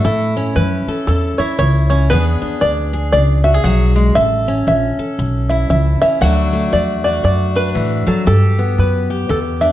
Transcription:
0.00 0.36 A3 medium
0.04 0.55 A2 medium
0.04 0.52 A2 medium
0.04 1.39 E4 medium
0.04 0.53 A4 loud
0.37 1.89 C#4 medium
0.56 0.85 F#2 medium
0.56 1.04 E3 medium
0.56 1.07 B4 medium
0.87 2.09 A4 medium
0.87 muted upright bass stroke soft
1.07 1.36 E2 medium
1.07 1.55 A2 medium
1.07 1.40 A4 medium
1.38 2.11 E4 medium
1.38 1.57 C#5 medium
1.38 muted upright bass stroke soft
1.59 2.09 C#2 medium
1.59 2.06 E3 medium
1.59 1.89 C#5 medium
1.90 2.08 C#4 medium
1.90 2.11 C#5 medium
2.10 2.39 E2 medium
2.10 2.58 E3 medium
2.10 2.60 B3 medium
2.10 2.40 D4 medium
2.10 2.92 G#4 medium
2.10 2.63 B4 loud
2.41 4.14 D4 medium
2.41 muted upright bass stroke soft
2.61 3.12 D2 medium
2.61 3.09 B3 medium
2.61 3.11 D5 medium
2.93 3.43 G#4 medium
3.12 3.63 C#2 medium
3.12 3.60 B2 medium
3.12 3.44 D5 medium
3.44 3.54 F#4 medium
3.44 3.63 E5 medium
3.54 4.16 G#4 medium
3.64 4.14 B1 medium
3.64 3.95 F#3 medium
3.64 4.12 F#5 medium
3.96 4.16 G#3 medium
4.15 4.66 A1 medium
4.15 4.63 A2 medium
4.15 4.98 A4 medium
4.15 4.63 E5 loud
4.48 6.00 C#4 medium
4.67 4.96 A#1 medium
4.67 5.15 E3 medium
4.67 5.48 E5 medium
4.98 6.19 A4 medium
4.98 muted upright bass stroke soft
5.19 5.69 B1 medium
5.19 5.66 A2 medium
5.49 6.19 E4 medium
5.49 5.69 E5 medium
5.70 5.99 C#2 medium
5.70 6.18 E3 medium
5.70 6.00 E5 medium
6.01 6.19 C#4 medium
6.01 6.21 E5 medium
6.01 muted upright bass stroke soft
6.21 6.71 D2 medium
6.21 6.69 D3 medium
6.21 6.71 F#3 medium
6.21 6.52 A3 medium
6.21 7.54 D4 medium
6.21 7.03 F#4 medium
6.21 6.69 F#5 loud
6.53 8.27 A3 medium
6.72 7.23 E2 medium
6.72 7.20 F#3 medium
6.72 7.03 D5 medium
7.04 8.27 F#4 medium
7.04 7.23 D5 medium
7.24 7.74 F#2 medium
7.24 7.71 A2 medium
7.24 7.56 D5 medium
7.55 8.25 D4 medium
7.55 8.07 B4 medium
7.75 8.04 A2 medium
7.75 8.06 E3 medium
8.07 8.27 F#3 medium
8.07 8.26 A4 medium
8.07 muted upright bass stroke soft
8.26 8.74 G2 medium
8.26 8.77 G2 medium
8.26 9.10 G4 medium
8.26 8.75 A4 loud
8.59 9.72 B3 medium
8.78 9.28 F#2 medium
8.78 9.30 B4 medium
9.10 9.72 G4 medium
9.29 9.72 E2 medium
9.29 9.72 D3 medium
9.29 9.38 A4 medium
9.61 9.72 D4 medium
9.61 9.72 E5 medium

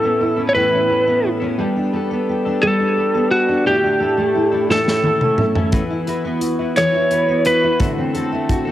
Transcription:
0.00 0.54 A2 medium
0.00 1.58 E3 medium
0.00 0.36 C#4 medium
0.00 0.37 E4 soft
0.00 0.44 A4 medium
0.00 0.89 A4 medium
0.00 0.35 A4 soft
0.05 0.39 B3 soft
0.05 0.38 C#4 soft
0.21 1.23 E4 medium
0.36 0.55 B3 soft
0.36 0.56 C#4 soft
0.36 0.55 E4 soft
0.36 0.54 A4 soft
0.49 0.54 C#5 medium
0.55 0.90 A2 medium
0.55 0.90 E3 medium
0.55 0.88 B3 medium
0.55 0.89 C#4 medium
0.55 0.90 E4 medium
0.55 0.91 A4 medium
0.55 1.28 B4 medium
0.73 1.40 C#4 soft
0.89 1.07 B3 soft
0.89 1.07 C#4 medium
0.89 1.07 E4 medium
0.89 1.05 A4 medium
1.06 1.43 B3 soft
1.06 1.41 C#4 soft
1.06 1.40 E4 soft
1.06 1.39 A4 soft
1.24 1.65 E4 soft
1.40 1.58 B3 soft
1.40 1.59 C#4 soft
1.40 1.59 E4 soft
1.40 1.58 A4 medium
1.58 1.93 G3 medium
1.58 1.91 B3 medium
1.58 1.92 D4 medium
1.58 1.93 G4 medium
1.58 1.94 A4 medium
1.76 2.45 D4 soft
1.92 2.10 B3 medium
1.92 2.11 D4 medium
1.92 2.11 G4 medium
1.92 2.09 A4 medium
2.10 3.13 B3 medium
2.10 2.46 D4 soft
2.10 2.45 G4 medium
2.10 2.44 A4 soft
2.29 3.32 G4 medium
2.45 2.62 D4 soft
2.45 2.62 G4 soft
2.45 2.62 A4 soft
2.62 2.97 G3 medium
2.62 2.96 B3 medium
2.62 2.97 D4 medium
2.62 2.97 G4 medium
2.62 3.31 A4 loud
2.62 2.98 A4 medium
2.80 3.47 D4 medium
2.97 3.14 B3 soft
2.97 3.15 D4 medium
2.97 3.15 G4 medium
2.97 3.13 A4 medium
3.14 3.73 B3 medium
3.14 3.50 D4 soft
3.14 3.48 G4 soft
3.14 3.47 A4 soft
3.31 3.67 F#4 medium
3.48 3.65 D4 soft
3.48 3.66 G4 soft
3.48 3.66 A4 soft
3.65 4.00 A2 medium
3.65 4.00 D3 medium
3.65 3.99 A3 medium
3.65 4.00 D4 medium
3.65 4.01 E4 medium
3.65 4.66 G4 medium
3.65 4.01 A4 medium
3.84 4.51 D4 medium
4.00 4.18 A3 medium
4.00 4.18 D4 medium
4.00 4.17 E4 medium
4.00 4.16 A4 medium
4.17 4.54 A3 soft
4.17 4.53 D4 soft
4.17 4.52 E4 soft
4.17 4.50 A4 soft
4.35 5.38 E4 medium
4.52 4.69 A3 soft
4.52 4.70 D4 soft
4.52 4.70 E4 soft
4.52 4.69 A4 soft
4.69 5.04 A2 medium
4.69 5.04 E3 medium
4.69 5.02 A3 medium
4.69 5.03 C#4 medium
4.69 5.04 E4 medium
4.69 5.05 A4 medium
4.69 5.44 A4 medium
4.69 snare medium
4.87 5.55 C#4 soft
4.87 snare medium
5.03 5.21 A3 medium
5.03 5.21 C#4 medium
5.03 5.21 E4 medium
5.03 5.19 A4 medium
5.03 high tom medium
5.20 5.57 A3 soft
5.20 5.56 C#4 soft
5.20 5.55 E4 soft
5.20 5.54 A4 soft
5.20 mid tom medium
5.38 5.90 E4 soft
5.38 mid tom medium
5.55 5.72 A3 soft
5.55 5.73 C#4 soft
5.55 5.72 E4 soft
5.55 5.73 A4 medium
5.55 floor tom medium
5.72 6.07 E3 medium
5.72 6.06 B3 medium
5.72 6.07 E4 medium
5.72 6.08 F#4 medium
5.72 6.08 B4 medium
5.72 kick loud
5.72 closed hi-hat medium
5.90 6.58 E4 medium
6.07 6.25 B3 medium
6.07 6.25 E4 medium
6.07 6.25 F#4 medium
6.07 6.23 B4 medium
6.07 closed hi-hat soft
6.25 7.27 B3 medium
6.25 6.61 E4 soft
6.25 6.59 F#4 soft
6.25 6.58 B4 medium
6.41 7.45 F#4 medium
6.41 closed hi-hat medium
6.59 6.76 E4 soft
6.59 6.77 F#4 soft
6.59 6.77 B4 soft
6.76 7.11 E3 medium
6.76 7.09 B3 medium
6.76 7.11 E4 medium
6.76 7.11 F#4 medium
6.76 7.12 B4 medium
6.76 7.46 C#5 medium
6.76 cross-stick loud
6.76 closed hi-hat medium
6.94 7.63 E4 soft
7.11 7.28 B3 medium
7.11 7.29 E4 medium
7.11 7.28 F#4 soft
7.11 7.26 B4 medium
7.11 closed hi-hat medium
7.27 7.87 B3 medium
7.27 7.64 E4 soft
7.27 7.62 F#4 soft
7.27 7.60 B4 medium
7.45 8.01 F#4 medium
7.45 7.79 B4 medium
7.45 closed hi-hat medium
7.62 7.80 E4 soft
7.62 7.80 F#4 soft
7.62 7.80 B4 medium
7.79 8.15 D3 medium
7.79 8.12 A3 medium
7.79 8.14 C4 medium
7.79 8.15 F#4 medium
7.79 8.16 A4 medium
7.79 kick loud
7.79 closed hi-hat medium
7.98 8.66 C4 medium
8.13 8.32 A3 medium
8.13 8.32 C4 medium
8.13 8.31 F#4 medium
8.13 8.30 A4 medium
8.13 closed hi-hat soft
8.31 8.72 A3 medium
8.31 8.67 C4 soft
8.31 8.66 F#4 soft
8.31 8.64 A4 soft
8.49 8.72 F#4 medium
8.49 kick medium
8.49 closed hi-hat medium
8.65 8.72 C4 soft
8.65 8.72 F#4 soft
8.65 8.72 A4 soft

